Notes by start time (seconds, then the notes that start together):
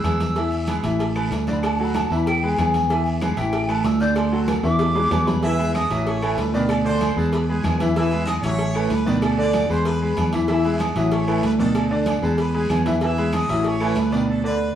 Already playing: E6
0.04 E2 G#3 G#4 B4, cowbell, high conga, low agogo, short guiro, claves
0.20 cowbell, high conga, low timbale, short guiro
0.35 E3 E4 E5, cowbell, low agogo, long guiro
0.52 high conga, low agogo
0.67 G#3 G#4 B4, cowbell, high conga, low timbale, low agogo, short guiro, claves
0.83 A1 E3 E4 E5, cowbell, short guiro
0.99 cowbell, high conga, low agogo, long guiro
1.15 A3 A4 B4, high conga, low agogo, claves
1.31 D2, cowbell, high conga, low timbale, short guiro
1.47 D3 D4 D5, high conga, low agogo, short guiro
1.52 B5
1.63 A5, cowbell, low agogo, long guiro, claves
1.74 A5
1.80 F#3 F#4 A4
1.84 B5
1.94 A5, cowbell, high conga, low timbale, low agogo, short guiro, claves
2.06 A5
2.10 E2 E3 E4 E5, short guiro
2.16 B5
2.26 G5, cowbell, low agogo, long guiro
2.37 G5
2.43 G#3 G#4 B4
2.47 G#5
2.58 E2 G#3 G#4 B4, cowbell, high conga, low timbale, low agogo, short guiro, claves
2.74 cowbell, high conga, short guiro
2.90 E3 E4 E5, cowbell, low agogo, long guiro
3.06 high conga, low agogo
3.21 G#3 G#4 B4, cowbell, high conga, low timbale, low agogo, short guiro, claves
3.37 A1 E3 E4 E5 G5, cowbell, short guiro
3.53 cowbell, high conga, low agogo, long guiro
3.69 A3 A4 B4 A5, high conga, low agogo, claves
3.84 D2 E6, cowbell, high conga, low timbale, short guiro
4.00 D3 D4 D5 G6, low agogo, short guiro
4.16 C6, cowbell, high conga, low agogo, long guiro, claves
4.32 F#3 F#4 A4, high conga
4.48 cowbell, high bongo, high conga, low timbale, low agogo, short guiro, claves
4.63 E2 E3 E4 E5 D6, high bongo, high conga, short guiro
4.79 cowbell, low bongo, high timbale, low agogo, long guiro
4.90 high timbale
4.95 G#3 G#4 B4, low bongo
5.11 E2 G#3 G#4 B4, cowbell, low bongo, high conga, low timbale, low agogo, short guiro, claves
5.27 B5, cowbell, low bongo, high conga, short guiro
5.33 low timbale
5.42 E3 E4 E5 E6, cowbell, high conga, low agogo, long guiro
5.58 G#3 G#4 B4, high conga, low agogo
5.74 D#5 D#6, cowbell, high conga, low timbale, low agogo, short guiro, claves
5.90 A1 E3 F#3 E4 E5, cowbell, short guiro
6.05 C#5 C#6, cowbell, high conga, low agogo, long guiro
6.22 E3 A3 A4 B4, high conga, low agogo, claves
6.37 D2 B4 B5, cowbell, low timbale, short guiro
6.53 B2 D#3 D4 D5, low agogo, short guiro
6.68 A4 A5, cowbell, high conga, low agogo, long guiro, claves
6.84 D3 D4 C5 D5 C6, high conga
7.01 cowbell, high conga, low timbale, low agogo, short guiro, claves
7.16 E2 G#3 G#4 A4 B4 A5, short guiro
7.31 B4 B5, cowbell, low agogo, long guiro
7.47 G#3 G#4 B4 G#5
7.64 E2, cowbell, high conga, low timbale, low agogo, short guiro, claves
7.79 E3 E4 E5, cowbell, high conga, short guiro
7.94 E3 E4 E5 E6, cowbell, low agogo, long guiro
8.11 G#3 G#4 B4, low agogo
8.25 D#5 D#6, cowbell, high conga, low timbale, low agogo, short guiro, claves
8.41 A1 E3 F#3 E4 C#5 E5 C#6, cowbell, short guiro
8.59 cowbell, high conga, low agogo, long guiro
8.74 E3 A3 A4 B4, high conga, low agogo, claves
8.89 D2 B4 B5, cowbell, high conga, low timbale, short guiro
9.06 B2 D#3 D4 D5, high conga, low agogo, short guiro
9.20 A4 A5, cowbell, high conga, low agogo, long guiro, claves
9.37 D3 D4 D5 D6, high conga
9.53 cowbell, high conga, low timbale, low agogo, short guiro, claves
9.69 E2 G#3 G#4 B4 C5 C6, high conga, short guiro
9.84 B4 B5, cowbell, low agogo, long guiro
10.01 G#3 G#4 B4 B5, high conga
10.17 E2, cowbell, high conga, low timbale, low agogo, short guiro, claves
10.33 E3 E4 E5, cowbell, high conga, short guiro
10.47 E3 E4 E5 E6, cowbell, high conga, low agogo, long guiro
10.65 G#3 G#4 B4, low agogo
10.73 E5
10.79 D#5 D#6, cowbell, high conga, low timbale, low agogo, short guiro, claves
10.95 A1 E3 F#3 E4 E5, cowbell, short guiro
11.11 C#5 C#6, cowbell, high conga, low agogo, long guiro
11.27 E3 A3 A4 B4, high conga, low agogo, claves
11.43 D2 B4 B5, cowbell, high conga, low timbale, short guiro
11.59 B2 D#3 D4 A4 D5 A5, high conga, low agogo, short guiro
11.75 cowbell, low agogo, long guiro, claves
11.90 D3 D4 D5
12.06 cowbell, high conga, low timbale, low agogo, short guiro, claves
12.22 E2 G#3 G#4 A4 B4 A5, short guiro
12.38 B4 B5, cowbell, low agogo, long guiro
12.54 G#3 G#4 B4 G#5
12.69 E2, cowbell, high conga, low timbale, low agogo, short guiro, claves
12.86 E3 E4 E5, cowbell, high conga, short guiro
13.01 E3 E4 E5 E6, cowbell, low agogo, long guiro
13.17 G#3 G#4 B4, low agogo
13.33 D#5 D#6, cowbell, high conga, low timbale, low agogo, short guiro, claves
13.49 A1 E3 F#3 E4 E5, cowbell, short guiro
13.64 C#5 C#6, cowbell, high conga, low agogo, long guiro
13.80 E3 A3 A4 B4, high conga, low agogo, claves
13.95 D2 B4 B5, cowbell, high conga, low timbale, short guiro
14.12 B2 D#3 D4 D5, low agogo, short guiro
14.28 A4 A5
14.44 D3 D4 B4 D5 B5